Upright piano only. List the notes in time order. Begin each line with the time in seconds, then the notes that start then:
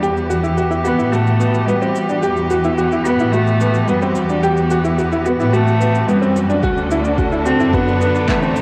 0.03 G4
0.30 F#4
0.43 E4
0.58 F#4
0.71 E4
0.85 F#4
0.99 E4
1.12 F#4
1.40 B3
1.68 B3
1.82 C4
2.09 D4
2.23 G4
2.50 F#4
2.65 E4
2.78 F#4
2.92 E4
3.06 F#4
3.20 E4
3.34 F#4
3.61 B3
3.89 B3
4.02 C4
4.30 D4
4.43 G4
4.71 F#4
4.84 E4
4.98 F#4
5.12 E4
5.26 F#4
5.40 E4
5.53 F#4
5.80 B3
6.08 B3
6.22 C4
6.50 D4
6.63 F#4
6.91 E4
7.05 D4
7.19 F#4
7.32 E4
7.46 F#4
7.60 E4
7.74 F#4
8.01 B3
8.28 B3
8.42 C4